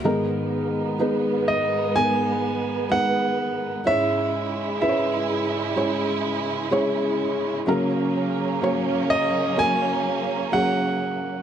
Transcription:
X:1
M:4/4
L:1/8
Q:1/4=63
K:G#m
V:1 name="Grand piano"
z3 d g2 f2 | e2 e4- e z | z3 d g2 f2 |]
V:2 name="Felt piano"
[G,B,DA]2 [G,B,DB]2 [G,B,DA]2 [G,B,DB]2 | [G,CEc]2 [G,CEBc]2 [G,CEc]2 [G,CEc]2 | [F,A,CA]2 [F,A,Cc]2 [F,A,CA]2 [F,A,CG]2 |]
V:3 name="Felt piano" clef=bass
[G,,D,]3 z4 z | G,,3 z4 z | C,3 z4 z |]
V:4 name="String section"
[G,B,]8 | [C,G,E]8 | [F,A,C]8 |]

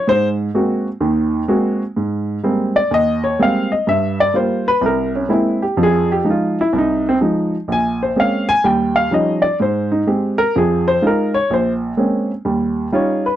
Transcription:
X:1
M:4/4
L:1/8
Q:"Swing" 1/4=126
K:Abmix
V:1 name="Grand piano"
c z6 z | [K:Ab] z3 =d e _d f e | _f =d c _c B _D =E G | A G F _F E C z2 |
a c f a g f e =d | c E z B A c B d | c z4 z d _c |]
V:2 name="Grand piano" clef=bass
A,,2 [A,B,CG] z [E,,E,]2 [A,B,CG] z | [K:Ab] A,,2 [G,A,B,C] z E,,2 [G,A,B,C] z | G,,2 [G,B,F] z C,,2 [A,B,C=E] z | [F,,F,]2 [F,A,E] z C,,2 [F,A,E] z |
B,,,2 [A,B,CD] z [E,,G,]2 [F,G,DE] z | A,,2 [A,CG] z [F,,F,]2 [A,EF] z | B,,,2 [A,B,CD] z [E,,G,]2 [G,DEF] z |]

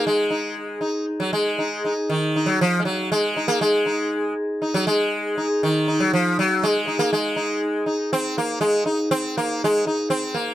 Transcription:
X:1
M:7/4
L:1/16
Q:1/4=119
K:none
V:1 name="Sitar"
z2 _E2 z2 E2 z4 E2 E2 z2 E2 z6 E2 | z2 _E2 z4 E2 z4 E2 z2 E2 z6 E2 | z2 _E2 z2 E2 z6 E2 z6 E2 z4 |]
V:2 name="Sitar" clef=bass
_A,6 z3 _G, A,4- A, z _E,3 G, F,3/2 A,/2 G,2 A,3 _B, | _A,6 z3 _G, A,4- A, z _E,3 G, F,2 G,2 A,3 _B, | _A,6 z2 C2 _B,2 A,2 z2 C2 B,2 A,2 z2 C2 B,3/2 z/2 |]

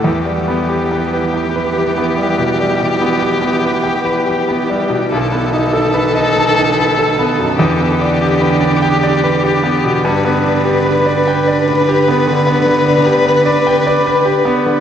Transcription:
X:1
M:12/8
L:1/16
Q:3/8=48
K:Edor
V:1 name="Violin"
G24 | A12 G12 | [K:Glyd] B24 |]
V:2 name="Grand piano"
E,, G, B, G B, B g B G B, G, B,, G, B,, B, G B, B g B G B, G, B,, | B,,, B, ^D A B ^d a d B A B, F,, E,, B, =D G B =d g d B G B, B,, | [K:Glyd] G,, B, D G B d g d B G B, D, B, D, D G B d g d B G B, D, |]
V:3 name="Cello" clef=bass
E,24 | ^D,12 =D,12 | [K:Glyd] D,24 |]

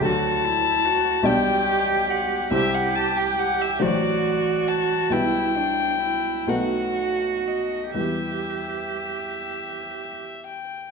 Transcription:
X:1
M:6/8
L:1/16
Q:3/8=46
K:Em
V:1 name="Violin"
a6 g4 f2 | e f a g f e d4 a2 | g6 f4 ^d2 | e8- e2 g2 |]
V:2 name="Cello"
F2 E2 F2 G6 | G6 F6 | E2 D2 E2 F6 | G8- G z3 |]
V:3 name="Grand piano"
[D,,F,DA]6 [B,,,G,Dd]6 | [C,,G,Ec]6 [A,,,F,Fc]6 | [B,,,G,EB]6 [B,,,A,^DB]6 | [E,,G,EB]12 |]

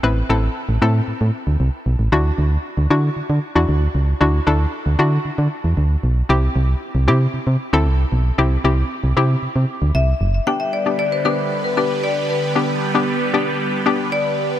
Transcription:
X:1
M:4/4
L:1/16
Q:1/4=115
K:G
V:1 name="Marimba"
z16 | z16 | z16 | z16 |
z12 e4 | g e d2 d c B3 B B2 d2 B2- | B2 z8 z2 d4 |]
V:2 name="Synth pluck"
[CEB] z [CEA]3 z [CEA]4- [CEA] z4 z | [DEF]4 z2 [DEF]3 z2 [DEF]3 z2 | [DEF] z [DEA]3 z [DEF]4- [DEF] z4 z | [CEG]4 z2 [CEG]3 z2 [CEA]3 z2 |
[CEG] z [CEG]3 z [CEG]4- [CEG] z4 z | [B,DG]2 z [B,DG]2 z [B,DG]3 z [B,DG]4 z2 | [B,DG]2 z [B,DG]2 z [B,DG]3 z [B,DG]4 z2 |]
V:3 name="Supersaw synth"
z16 | z16 | z16 | z16 |
z16 | [D,G,B,GB]16- | [D,G,B,GB]16 |]
V:4 name="FM bass" clef=bass
A,,,2 A,,,2 z A,,, A,,2 A,, A,, z D,, C,, z B,,, A,,, | D,,2 D,,2 z D,, D,2 D, D, z E,, D,,2 ^C,,2 | D,,2 D,,2 z D,, D,2 D, D, z E,, D,,2 B,,,2 | C,,2 C,,2 z C,, C,2 C, C, z D,, C,,2 B,,,2 |
C,,2 C,,2 z C,, C,2 C, C, z D,, C,,2 F,,,2 | z16 | z16 |]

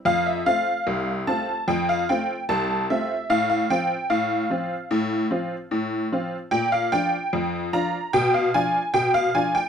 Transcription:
X:1
M:2/4
L:1/16
Q:1/4=74
K:F
V:1 name="Honky-tonk piano"
f e f4 a2 | g f g2 a2 e2 | f f g2 f4- | f6 z2 |
g f g4 b2 | g f _a2 g f a g |]
V:2 name="Honky-tonk piano"
F,,2 [A,CF]2 C,,2 [A,CF]2 | F,,2 [A,CF]2 C,,2 [A,CF]2 | A,,2 [F,CF]2 A,,2 [F,CF]2 | A,,2 [F,CF]2 A,,2 [F,CF]2 |
B,,2 [F,DF]2 F,,2 [F,DF]2 | =B,,2 [F,DF]2 B,,2 [F,DF]2 |]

